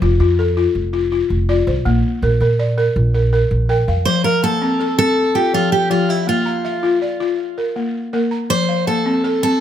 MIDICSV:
0, 0, Header, 1, 4, 480
1, 0, Start_track
1, 0, Key_signature, -1, "major"
1, 0, Tempo, 368777
1, 2413, Time_signature, 12, 3, 24, 8
1, 12501, End_track
2, 0, Start_track
2, 0, Title_t, "Steel-string acoustic guitar"
2, 0, Program_c, 0, 25
2, 5277, Note_on_c, 0, 72, 92
2, 5504, Note_off_c, 0, 72, 0
2, 5522, Note_on_c, 0, 70, 83
2, 5746, Note_off_c, 0, 70, 0
2, 5774, Note_on_c, 0, 69, 80
2, 6473, Note_off_c, 0, 69, 0
2, 6489, Note_on_c, 0, 69, 90
2, 6964, Note_on_c, 0, 67, 71
2, 6981, Note_off_c, 0, 69, 0
2, 7210, Note_off_c, 0, 67, 0
2, 7216, Note_on_c, 0, 65, 79
2, 7442, Note_off_c, 0, 65, 0
2, 7447, Note_on_c, 0, 67, 81
2, 7670, Note_off_c, 0, 67, 0
2, 7689, Note_on_c, 0, 65, 73
2, 7936, Note_off_c, 0, 65, 0
2, 7936, Note_on_c, 0, 64, 67
2, 8171, Note_off_c, 0, 64, 0
2, 8184, Note_on_c, 0, 65, 73
2, 9085, Note_off_c, 0, 65, 0
2, 11064, Note_on_c, 0, 72, 96
2, 11544, Note_off_c, 0, 72, 0
2, 11549, Note_on_c, 0, 69, 77
2, 12260, Note_off_c, 0, 69, 0
2, 12276, Note_on_c, 0, 69, 90
2, 12486, Note_off_c, 0, 69, 0
2, 12501, End_track
3, 0, Start_track
3, 0, Title_t, "Balafon"
3, 0, Program_c, 1, 12
3, 0, Note_on_c, 1, 72, 59
3, 25, Note_on_c, 1, 65, 70
3, 247, Note_off_c, 1, 65, 0
3, 263, Note_on_c, 1, 65, 78
3, 499, Note_off_c, 1, 72, 0
3, 506, Note_on_c, 1, 69, 66
3, 726, Note_off_c, 1, 65, 0
3, 742, Note_on_c, 1, 65, 75
3, 1196, Note_off_c, 1, 65, 0
3, 1212, Note_on_c, 1, 65, 64
3, 1221, Note_off_c, 1, 69, 0
3, 1441, Note_off_c, 1, 65, 0
3, 1456, Note_on_c, 1, 65, 69
3, 1923, Note_off_c, 1, 65, 0
3, 1938, Note_on_c, 1, 65, 75
3, 1940, Note_on_c, 1, 74, 64
3, 2179, Note_on_c, 1, 72, 62
3, 2413, Note_on_c, 1, 58, 82
3, 2415, Note_off_c, 1, 65, 0
3, 2654, Note_off_c, 1, 74, 0
3, 2655, Note_off_c, 1, 72, 0
3, 2892, Note_off_c, 1, 58, 0
3, 2902, Note_on_c, 1, 70, 65
3, 3126, Note_off_c, 1, 70, 0
3, 3141, Note_on_c, 1, 70, 70
3, 3376, Note_on_c, 1, 74, 67
3, 3599, Note_off_c, 1, 70, 0
3, 3614, Note_on_c, 1, 70, 74
3, 4077, Note_off_c, 1, 70, 0
3, 4091, Note_off_c, 1, 74, 0
3, 4093, Note_on_c, 1, 70, 60
3, 4316, Note_off_c, 1, 70, 0
3, 4331, Note_on_c, 1, 70, 76
3, 4790, Note_off_c, 1, 70, 0
3, 4806, Note_on_c, 1, 70, 70
3, 4808, Note_on_c, 1, 79, 58
3, 5053, Note_on_c, 1, 77, 59
3, 5285, Note_off_c, 1, 70, 0
3, 5291, Note_on_c, 1, 53, 80
3, 5511, Note_off_c, 1, 77, 0
3, 5526, Note_off_c, 1, 79, 0
3, 5527, Note_on_c, 1, 77, 53
3, 5767, Note_off_c, 1, 53, 0
3, 5768, Note_on_c, 1, 58, 64
3, 6008, Note_on_c, 1, 60, 77
3, 6243, Note_on_c, 1, 69, 60
3, 6245, Note_off_c, 1, 77, 0
3, 6471, Note_off_c, 1, 60, 0
3, 6486, Note_off_c, 1, 58, 0
3, 6486, Note_on_c, 1, 60, 72
3, 6964, Note_off_c, 1, 69, 0
3, 6965, Note_off_c, 1, 60, 0
3, 6968, Note_on_c, 1, 65, 60
3, 7204, Note_on_c, 1, 53, 69
3, 7663, Note_off_c, 1, 65, 0
3, 7665, Note_off_c, 1, 53, 0
3, 7679, Note_on_c, 1, 65, 59
3, 7680, Note_on_c, 1, 53, 72
3, 7926, Note_on_c, 1, 77, 59
3, 8162, Note_on_c, 1, 58, 75
3, 8164, Note_off_c, 1, 53, 0
3, 8403, Note_off_c, 1, 65, 0
3, 8403, Note_on_c, 1, 82, 61
3, 8407, Note_off_c, 1, 77, 0
3, 8645, Note_off_c, 1, 58, 0
3, 8650, Note_on_c, 1, 76, 62
3, 8889, Note_on_c, 1, 65, 81
3, 9127, Note_off_c, 1, 82, 0
3, 9134, Note_on_c, 1, 74, 63
3, 9359, Note_off_c, 1, 65, 0
3, 9371, Note_off_c, 1, 76, 0
3, 9375, Note_on_c, 1, 65, 70
3, 9854, Note_off_c, 1, 65, 0
3, 9854, Note_off_c, 1, 74, 0
3, 9862, Note_on_c, 1, 70, 61
3, 10100, Note_on_c, 1, 58, 67
3, 10567, Note_off_c, 1, 70, 0
3, 10571, Note_off_c, 1, 58, 0
3, 10583, Note_on_c, 1, 70, 59
3, 10587, Note_on_c, 1, 58, 74
3, 10819, Note_on_c, 1, 82, 55
3, 11063, Note_off_c, 1, 58, 0
3, 11067, Note_on_c, 1, 53, 79
3, 11299, Note_off_c, 1, 82, 0
3, 11302, Note_off_c, 1, 70, 0
3, 11306, Note_on_c, 1, 77, 60
3, 11544, Note_off_c, 1, 53, 0
3, 11549, Note_on_c, 1, 58, 69
3, 11787, Note_on_c, 1, 60, 78
3, 12025, Note_off_c, 1, 77, 0
3, 12025, Note_on_c, 1, 69, 64
3, 12257, Note_off_c, 1, 60, 0
3, 12268, Note_off_c, 1, 58, 0
3, 12273, Note_on_c, 1, 60, 75
3, 12501, Note_off_c, 1, 60, 0
3, 12501, Note_off_c, 1, 69, 0
3, 12501, End_track
4, 0, Start_track
4, 0, Title_t, "Upright bass"
4, 0, Program_c, 2, 32
4, 23, Note_on_c, 2, 29, 94
4, 220, Note_off_c, 2, 29, 0
4, 257, Note_on_c, 2, 41, 89
4, 849, Note_off_c, 2, 41, 0
4, 976, Note_on_c, 2, 29, 80
4, 1567, Note_off_c, 2, 29, 0
4, 1694, Note_on_c, 2, 29, 83
4, 2088, Note_off_c, 2, 29, 0
4, 2173, Note_on_c, 2, 36, 88
4, 2370, Note_off_c, 2, 36, 0
4, 2417, Note_on_c, 2, 34, 89
4, 2612, Note_off_c, 2, 34, 0
4, 2894, Note_on_c, 2, 34, 89
4, 3090, Note_off_c, 2, 34, 0
4, 3128, Note_on_c, 2, 46, 82
4, 3720, Note_off_c, 2, 46, 0
4, 3852, Note_on_c, 2, 34, 88
4, 4441, Note_off_c, 2, 34, 0
4, 4567, Note_on_c, 2, 34, 86
4, 4961, Note_off_c, 2, 34, 0
4, 5047, Note_on_c, 2, 41, 83
4, 5243, Note_off_c, 2, 41, 0
4, 12501, End_track
0, 0, End_of_file